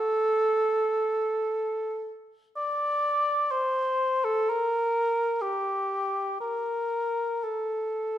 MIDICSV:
0, 0, Header, 1, 2, 480
1, 0, Start_track
1, 0, Tempo, 500000
1, 7854, End_track
2, 0, Start_track
2, 0, Title_t, "Cor anglais"
2, 0, Program_c, 0, 69
2, 0, Note_on_c, 0, 69, 85
2, 2036, Note_off_c, 0, 69, 0
2, 2462, Note_on_c, 0, 74, 91
2, 3371, Note_on_c, 0, 72, 89
2, 3386, Note_off_c, 0, 74, 0
2, 4075, Note_on_c, 0, 69, 81
2, 4089, Note_off_c, 0, 72, 0
2, 4314, Note_on_c, 0, 70, 85
2, 4328, Note_off_c, 0, 69, 0
2, 5199, Note_on_c, 0, 67, 70
2, 5213, Note_off_c, 0, 70, 0
2, 6141, Note_off_c, 0, 67, 0
2, 6147, Note_on_c, 0, 70, 74
2, 7136, Note_on_c, 0, 69, 55
2, 7150, Note_off_c, 0, 70, 0
2, 7854, Note_off_c, 0, 69, 0
2, 7854, End_track
0, 0, End_of_file